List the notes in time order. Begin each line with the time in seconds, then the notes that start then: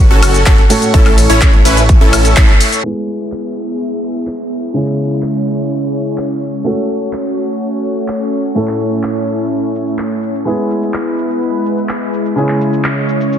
Already playing: A3 C#4 F#4 A4 C#5 F#5 C#6
0.11 F#1 C#4 F#4 A4, closed hi-hat
0.23 open hi-hat, ride, high woodblock, shaker
0.34 closed hi-hat, shaker
0.46 F#1 C#4 F#4 A4, kick, clap, closed hi-hat, ride, shaker
0.58 closed hi-hat
0.69 A2 A3 C#4 F#4 A4, open hi-hat, ride, shaker
0.82 closed hi-hat, shaker
0.93 A1 A2 A3 C#4 E4 A4 C#5 E5, kick, closed hi-hat, ride, shaker
1.06 clap, open hi-hat, high woodblock
1.18 open hi-hat, ride, shaker
1.30 A1 C#4 E4 C#5, closed hi-hat, shaker
1.41 kick, clap, closed hi-hat, ride, shaker
1.53 closed hi-hat
1.65 A1 C#4 E4 B4, open hi-hat, ride, shaker
1.77 closed hi-hat, shaker
1.89 kick, closed hi-hat, ride, shaker
2.01 A1 C#4 E4 A4, closed hi-hat
2.13 open hi-hat, ride, high woodblock, shaker
2.25 closed hi-hat, shaker
2.36 A1 C#4 E4 A4, kick, clap, closed hi-hat, ride, shaker
2.49 closed hi-hat
2.60 open hi-hat, ride, shaker
2.72 closed hi-hat, shaker
2.83 G#3 B3 E4 G#4 E5, downlifter
3.09 shaker
3.32 clap
3.56 shaker
3.68 shaker
3.80 shaker
4.04 shaker
4.16 shaker
4.27 clap
4.52 shaker
4.64 shaker
4.74 C#3 G#3 C#4 E4 G#4 C#5, shaker
4.86 clap
4.99 shaker
5.11 shaker
5.22 clap
5.47 shaker
5.59 shaker
5.71 shaker
5.95 shaker
6.07 shaker
6.18 clap
6.42 shaker
6.54 shaker
6.64 A3 C#4 F#4 A4, shaker
6.90 shaker
7.02 shaker
7.13 clap
7.38 shaker
7.49 shaker
7.61 shaker
7.85 shaker
7.97 shaker
8.08 clap
8.33 shaker
8.45 shaker
8.55 A2 A3 C#4 E4 A4, shaker
8.68 clap
8.80 shaker
8.92 shaker
9.03 clap
9.28 shaker
9.40 shaker
9.52 shaker
9.76 shaker
9.87 shaker
9.98 clap, shaker
10.23 shaker
10.35 shaker
10.45 G#3 B3 E4 G#4 B4, shaker
10.71 shaker
10.83 shaker
10.94 clap, shaker
11.18 shaker
11.30 shaker
11.42 shaker
11.66 shaker
11.78 shaker
11.89 clap, shaker
12.14 shaker
12.26 shaker
12.36 C#3 G#3 C#4 E4 G#4 C#5, shaker
12.49 clap
12.61 shaker
12.73 shaker
12.84 clap, shaker
13.09 shaker
13.21 shaker
13.33 shaker